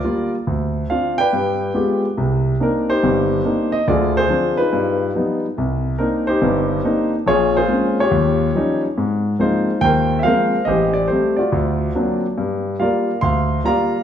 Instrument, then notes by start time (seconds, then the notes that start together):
grand piano
Already playing: A#4 D5
0.04 G3 A#3 F4
0.47 D2
0.90 C4 D4 F4 F5
1.18 B4 D5 G5
1.33 G2
1.74 G#3 B3 F4 G4
2.17 C2 C3
2.60 A#3 C4 D4 D#4 A#4
2.89 D#4 G4 C5
3.03 G1 G2
3.45 A#3 C4 D4 D#4
3.72 D#5
3.88 D2 D3 F4 G#4 D5
4.17 F4 G#4 C5
4.29 F3 C4 D4
4.57 D#4 F4 B4
4.73 G2
5.15 F3 G3 B3 D#4
5.58 C2
5.98 A#3 C4 D4 D#4 A#4
6.27 D#4 G4 C5
6.42 G1 G2
6.84 A#3 C4 D4 D#4
7.26 A#1 F4 G#4 C#5
7.57 F4 G#4 C5
7.68 G#3 A#3 C4 C#4
8.00 F4 G4 C#5
8.11 D#2
8.55 F3 G3 C#4 D#4
8.98 G#2
9.39 F3 G#3 A#3 C4 D#4 F4 C5
9.81 D#2 A#4 C5 G5
10.19 E5 F5
10.24 F3 G#3 A#3 C4 A#4 C5
10.65 A1 G4 C5 D#5
10.93 D5
11.08 G3 A3 C4 C5
11.37 F4 F#4 D5
11.52 D2
11.95 F#3 A#3 C4 D4
12.38 G2
12.80 G3 A#3 F4 A#4 D5 F5
13.21 D2 F5 C6
13.64 G3 A#3 F4 D5 F5 A#5